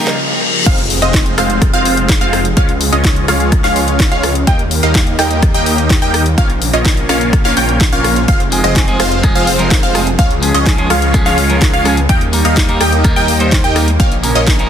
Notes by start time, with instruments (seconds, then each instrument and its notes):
Already playing: detuned saw bass A#1, analog synth pad C#3 F3 A#3, clean electric guitar G3 A#3 D#4 A#4, reverse cymbal, riser
0.07 snare, closed hi-hat
0.66 detuned saw bass F1, analog synth pad C3 F3 G#3, supersaw synth G#3 C4 F4 C5 F5, synth pluck F5, kick, closed hi-hat, crash, impact
0.78 closed hi-hat
0.90 open hi-hat
1.02 detuned saw bass F1, supersaw synth G#3 C4 F4 C5 D#5, synth pluck D#5, closed hi-hat
1.14 kick, snare, closed hi-hat
1.26 closed hi-hat
1.38 detuned saw bass F1, supersaw synth G#3 C4 F4 C5 F5, synth pluck F5, cross-stick, open hi-hat
1.50 closed hi-hat
1.62 kick, cross-stick, closed hi-hat
1.73 detuned saw bass F1, supersaw synth G#3 C4 F4 C5 F5, synth pluck F5, closed hi-hat
1.85 open hi-hat
1.97 closed hi-hat
2.09 kick, snare, closed hi-hat
2.21 detuned saw bass F1, supersaw synth G#3 C4 F4 C5 F5, synth pluck F5, closed hi-hat
2.33 cross-stick, open hi-hat
2.45 closed hi-hat
2.57 detuned saw bass C#2, analog synth pad C#3 G#3, supersaw synth G#3 C#4 F4 C#5 F5, synth pluck F5, kick, closed hi-hat
2.69 closed hi-hat
2.81 open hi-hat
2.92 detuned saw bass C#2, supersaw synth G#3 C#4 F4 C#5 D#5, synth pluck D#5, closed hi-hat
3.04 kick, snare, closed hi-hat
3.16 closed hi-hat
3.28 detuned saw bass C#2, supersaw synth G#3 C#4 F4 C#5 F5, synth pluck F5, cross-stick, open hi-hat
3.40 closed hi-hat
3.52 kick, cross-stick, closed hi-hat
3.64 detuned saw bass C#2, supersaw synth G#3 C#4 F4 C#5 F5, synth pluck F5, snare, open hi-hat
3.76 open hi-hat
3.88 closed hi-hat
4.00 kick, snare, closed hi-hat
4.12 detuned saw bass C#2, supersaw synth G#3 C#4 F4 C#5 F5, synth pluck F5, closed hi-hat
4.23 cross-stick, open hi-hat
4.35 closed hi-hat
4.47 detuned saw bass D#2, analog synth pad D#3 G3 A#3, supersaw synth A#3 D#4 G4 D#5 G5, synth pluck G5, kick, closed hi-hat
4.59 closed hi-hat
4.71 open hi-hat
4.83 detuned saw bass D#2, supersaw synth A#3 D#4 G4 D#5 F5, synth pluck F5, closed hi-hat
4.95 kick, snare, closed hi-hat
5.07 closed hi-hat
5.19 detuned saw bass D#2, supersaw synth A#3 D#4 G4 D#5 G5, synth pluck G5, cross-stick, open hi-hat
5.31 closed hi-hat
5.43 kick, cross-stick, closed hi-hat
5.54 detuned saw bass D#2, supersaw synth A#3 D#4 G4 D#5 G5, synth pluck G5, closed hi-hat
5.66 open hi-hat
5.78 closed hi-hat
5.90 kick, snare, closed hi-hat
6.02 detuned saw bass D#2, supersaw synth A#3 D#4 G4 D#5 G5, synth pluck G5, closed hi-hat
6.14 cross-stick, open hi-hat
6.26 closed hi-hat
6.38 detuned saw bass A#1, analog synth pad C#3 F3 A#3, supersaw synth A#3 C#4 F4 C#5 F5, synth pluck F5, kick, closed hi-hat
6.50 closed hi-hat
6.62 open hi-hat
6.73 detuned saw bass A#1, supersaw synth A#3 C#4 F4 C#5 D#5, synth pluck D#5, closed hi-hat
6.85 kick, snare, closed hi-hat
6.97 closed hi-hat
7.09 detuned saw bass A#1, supersaw synth A#3 C#4 F4 C#5 F5, synth pluck F5, cross-stick, open hi-hat
7.21 closed hi-hat
7.33 kick, cross-stick, closed hi-hat
7.45 detuned saw bass A#1, supersaw synth A#3 C#4 F4 C#5 F5, synth pluck F5, snare, open hi-hat
7.57 detuned saw bass A#1, supersaw synth A#3 C#4 F4 C#5 G5, synth pluck G5, open hi-hat
7.69 closed hi-hat
7.81 kick, snare, closed hi-hat
7.93 detuned saw bass A#1, supersaw synth A#3 C#4 F4 C#5 F5, synth pluck F5, closed hi-hat
8.04 cross-stick, open hi-hat
8.16 closed hi-hat
8.28 detuned saw bass F1, analog synth pad C3 G#3, supersaw synth G#3 C4 F4 C5 F5, synth pluck F5, kick, closed hi-hat
8.40 closed hi-hat
8.51 clean electric guitar F3 G#3 C4 G#4, open hi-hat
8.64 detuned saw bass F1, supersaw synth G#3 C4 F4 C5 D#5, synth pluck D#5, closed hi-hat
8.76 kick, snare, closed hi-hat
8.87 clean electric guitar F3 G#3 C4 G#4, closed hi-hat
9.00 detuned saw bass F1, supersaw synth G#3 C4 F4 C5 F5, synth pluck F5, cross-stick, open hi-hat
9.12 closed hi-hat
9.23 clean electric guitar F3 G#3 C4 G#4, kick, cross-stick, closed hi-hat
9.35 detuned saw bass F1, supersaw synth G#3 C4 F4 C5 F5, synth pluck F5, closed hi-hat
9.47 open hi-hat
9.59 clean electric guitar F3 G#3 C4 A#4, closed hi-hat
9.71 kick, snare, closed hi-hat
9.83 detuned saw bass F1, supersaw synth G#3 C4 F4 C5 F5, synth pluck F5, closed hi-hat
9.94 clean electric guitar F3 G#3 C4 G#4, cross-stick, open hi-hat
10.07 closed hi-hat
10.19 detuned saw bass C#2, analog synth pad C#3, supersaw synth G#3 C#4 F4 C#5 F5, synth pluck F5, kick, closed hi-hat
10.31 closed hi-hat
10.42 clean electric guitar F3 G#3 C#4 G#4, open hi-hat
10.54 detuned saw bass C#2, supersaw synth G#3 C#4 F4 C#5 D#5, synth pluck D#5, closed hi-hat
10.66 kick, snare, closed hi-hat
10.78 clean electric guitar F3 G#3 C#4 G#4, closed hi-hat
10.90 detuned saw bass C#2, supersaw synth G#3 C#4 F4 C#5 F5, synth pluck F5, cross-stick, open hi-hat
11.02 closed hi-hat
11.13 clean electric guitar F3 G#3 C#4 G#4, kick, cross-stick, closed hi-hat
11.26 detuned saw bass C#2, supersaw synth G#3 C#4 F4 C#5 F5, synth pluck F5, snare, open hi-hat
11.38 open hi-hat
11.49 clean electric guitar F3 G#3 C#4 A#4, closed hi-hat
11.62 kick, snare, closed hi-hat
11.73 detuned saw bass C#2, supersaw synth G#3 C#4 F4 C#5 F5, synth pluck F5, closed hi-hat
11.85 clean electric guitar F3 G#3 C#4 G#4, cross-stick, open hi-hat
11.97 closed hi-hat
12.09 detuned saw bass D#2, analog synth pad D#3 G3 A#3, supersaw synth A#3 D#4 G4 D#5 G5, synth pluck G5, kick, closed hi-hat
12.21 closed hi-hat
12.33 clean electric guitar G3 A#3 D#4 A#4, open hi-hat
12.45 detuned saw bass D#2, supersaw synth A#3 D#4 G4 D#5 F5, synth pluck F5, closed hi-hat
12.57 kick, snare, closed hi-hat
12.68 clean electric guitar G3 A#3 D#4 A#4, closed hi-hat
12.81 detuned saw bass D#2, supersaw synth A#3 D#4 G4 D#5 G5, synth pluck G5, cross-stick, open hi-hat
12.93 closed hi-hat
13.04 clean electric guitar G3 A#3 D#4 A#4, kick, cross-stick, closed hi-hat
13.16 detuned saw bass D#2, supersaw synth A#3 D#4 G4 D#5 G5, synth pluck G5, closed hi-hat
13.28 open hi-hat
13.40 clean electric guitar G3 A#3 D#4 C5, closed hi-hat
13.52 kick, snare, closed hi-hat
13.64 detuned saw bass D#2, supersaw synth A#3 D#4 G4 D#5 G5, synth pluck G5, closed hi-hat
13.75 clean electric guitar G3 A#3 D#4 A#4, cross-stick, open hi-hat
13.88 closed hi-hat
14.00 detuned saw bass A#1, analog synth pad C#3 F3, supersaw synth A#3 C#4 F4 C#5 F5, synth pluck F5, kick, closed hi-hat
14.12 closed hi-hat
14.23 clean electric guitar F3 A#3 C#4 A#4, open hi-hat
14.35 detuned saw bass A#1, supersaw synth A#3 C#4 F4 C#5 D#5, synth pluck D#5, closed hi-hat
14.47 kick, snare, closed hi-hat
14.59 clean electric guitar F3 A#3 C#4 A#4, closed hi-hat